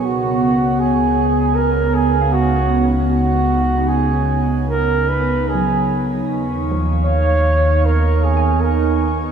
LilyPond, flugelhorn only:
\new Staff \with { instrumentName = "Flugelhorn" } { \time 4/4 \key cis \mixolydian \tempo 4 = 77 fis'4 gis'4 ais'8 gis'8 fis'8. r16 | fis'4 gis'8 r8 ais'8 b'8 gis'8. r16 | r4 cis''4 ais'8 gis'8 ais'8. r16 | }